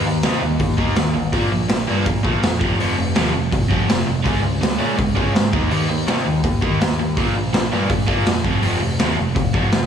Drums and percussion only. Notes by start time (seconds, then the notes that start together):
0.23 snare, open hi-hat
0.60 kick, open hi-hat
0.78 kick
0.96 snare, open hi-hat
1.33 kick, open hi-hat
1.69 snare, open hi-hat
2.06 kick, open hi-hat
2.25 kick
2.43 snare, open hi-hat
2.61 kick
2.80 open hi-hat
3.15 snare, open hi-hat
3.52 kick, open hi-hat
3.71 kick
3.89 snare, open hi-hat
4.26 kick, open hi-hat
4.63 snare, open hi-hat
4.99 kick, open hi-hat
5.17 kick
5.36 snare, open hi-hat
5.53 kick
5.71 open hi-hat
6.08 snare, open hi-hat
6.44 kick, open hi-hat
6.62 kick
6.81 snare, open hi-hat
7.17 kick, open hi-hat
7.54 snare, open hi-hat
7.89 kick, open hi-hat
8.08 kick
8.26 snare, open hi-hat
8.45 kick
8.62 open hi-hat
8.99 snare, open hi-hat
9.36 kick, open hi-hat
9.54 kick
9.72 snare, open hi-hat